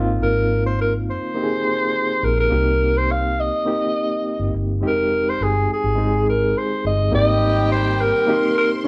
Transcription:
Already playing: fingered electric bass G#1, reed electric piano A#3 C4 D#4 F4
0.22 fingered electric bass G#1, alto saxophone A#4
0.66 alto saxophone C5
0.81 alto saxophone A#4
1.10 alto saxophone C5
1.34 reed electric piano A#3 C4 D#4 G4
1.43 reed electric piano G#4
2.23 fingered electric bass A#1, alto saxophone A#4
2.40 alto saxophone A#4
2.50 fingered electric bass C2, reed electric piano A#3 C4 D#4 G4
2.98 alto saxophone C5
3.12 alto saxophone F5
3.40 alto saxophone D#5
3.65 reed electric piano A#3 C4 D#4 G4
4.39 fingered electric bass G1
4.54 fingered electric bass G1
4.81 fingered electric bass F1, reed electric piano G#3 C4 D#4 G4
4.87 alto saxophone A#4
5.29 alto saxophone C5
5.41 fingered electric bass G1, alto saxophone G#4
5.73 alto saxophone G#4
5.84 fingered electric bass G#1
5.96 reed electric piano G#3 C4 D#4 G#4
6.29 alto saxophone A#4
6.58 alto saxophone C5
6.85 fingered electric bass G1, alto saxophone D#5
7.12 fingered electric bass G#1, horn section D#3 G3 C4 G4, reed electric piano A#3 C4 D#4 G4, string section G4 G5, alto saxophone D#5
7.72 alto saxophone C5
8.01 alto saxophone A#4
8.27 reed electric piano A#3 C4 D#4 G4, string section C5 C6
8.58 alto saxophone A#4
8.84 reed electric piano C#4

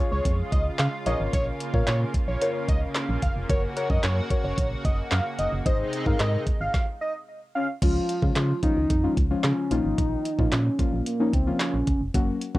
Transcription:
Already playing: analog synth pad C#3 G#3 F4
0.00 synth stab F4 G#4 C#5
0.12 fm bass C#2, analog synth lead C#5
0.25 fm bass F2, kick, closed hi-hat
0.52 fm bass C#2, analog synth lead D#5, kick, closed hi-hat
0.78 fm bass C#3, analog synth lead F5, snare, clap, closed hi-hat
1.06 fm bass A#1, analog synth pad A#3, synth stab F4 A#4 C#5, analog synth lead D#5, closed hi-hat
1.20 fm bass G#1
1.33 fm bass A#1, analog synth lead C#5, kick, closed hi-hat
1.60 closed hi-hat
1.74 fm bass A#2, synth stab F4 A#4 C#5, analog synth lead F5, kick
1.87 fm bass A#2, analog synth lead C#5, snare, clap, closed hi-hat
2.14 kick, closed hi-hat
2.28 fm bass A#1, analog synth lead C#5
2.41 synth stab F4 A#4 C#5, closed hi-hat
2.68 fm bass C#2, analog synth lead D#5, kick, closed hi-hat
2.95 snare, clap, closed hi-hat
3.09 fm bass A#1
3.22 fm bass F#1, analog synth lead F5, kick, closed hi-hat
3.36 fm bass F1
3.49 fm bass F#1, synth stab F#4 A#4 C#5, analog synth pad F#4, analog synth lead C#5, kick, closed hi-hat
3.76 synth stab F#4 A#4 C#5, closed hi-hat
3.90 fm bass F#2, analog synth lead D#5, kick
4.03 fm bass F#2, analog synth lead C#5, snare, clap, closed hi-hat
4.30 synth stab F#4 A#4 C#5, kick, closed hi-hat
4.44 fm bass F#1, analog synth lead C#5
4.58 fm bass A#1, kick, closed hi-hat
4.85 fm bass F#1, analog synth lead D#5, kick, closed hi-hat
5.11 fm bass F#2, analog synth lead F5, snare, clap, closed hi-hat
5.39 fm bass F#1, analog synth lead D#5, closed hi-hat
5.52 fm bass F#1
5.66 fm bass G#1, analog synth pad C3 G#3 D#4, synth stab D#4 G#4 C5, analog synth lead D#5, kick, closed hi-hat
5.93 closed hi-hat
6.06 fm bass G#2, synth stab D#4 G#4 A#4, analog synth lead F5, kick
6.19 fm bass G#2, analog synth lead D#5, snare, clap, closed hi-hat
6.47 kick, closed hi-hat
6.60 fm bass G#1, analog synth lead F5
6.74 kick, snare
7.01 analog synth lead D#5
7.55 soft synth lead C#4, analog synth lead F5
7.82 fm bass C#2, synth stab F3 G#3 C#4 F4, soft synth lead F4, kick, closed hi-hat, crash
8.09 closed hi-hat
8.22 fm bass C#3, synth stab F3 G#3 C#4 F4, kick
8.35 fm bass C#3, soft synth lead F4, snare, clap, closed hi-hat
8.63 synth stab F3 G#3 C#4 F4, soft synth lead D#4, kick, closed hi-hat
8.77 fm bass C#2
8.90 fm bass F2, kick, closed hi-hat
9.03 synth stab F3 G#3 C#4 F4
9.17 fm bass C#2, kick, closed hi-hat
9.30 synth stab F3 G#3 C#4 F4
9.43 fm bass C#3, soft synth lead C#4, snare, clap, closed hi-hat
9.71 fm bass A#1, synth stab F3 A#3 C#4 F4, soft synth lead D#4, closed hi-hat
9.85 fm bass G#1
9.98 fm bass A#1, kick, closed hi-hat
10.25 closed hi-hat
10.39 fm bass A#2, synth stab F3 A#3 C#4 F4, kick
10.52 fm bass A#2, soft synth lead C#4, snare, clap, closed hi-hat
10.79 synth stab F3 A#3 C#4 F4, soft synth lead A#3, kick, closed hi-hat
10.93 fm bass A#1
11.06 soft synth lead A#3, closed hi-hat
11.20 synth stab F3 A#3 C#4 D#4
11.33 fm bass C#2, soft synth lead C4, kick, closed hi-hat
11.47 synth stab F3 A#3 C#4 F4
11.59 soft synth lead C#4, snare, clap, closed hi-hat
11.74 fm bass A#1
11.87 fm bass F#1, kick, closed hi-hat
12.01 fm bass F1
12.14 fm bass F#1, synth stab F#3 A#3 C#4 F#4, kick, closed hi-hat
12.41 closed hi-hat
12.55 fm bass F#2, synth stab F#3 A#3 C#4 F#4, kick

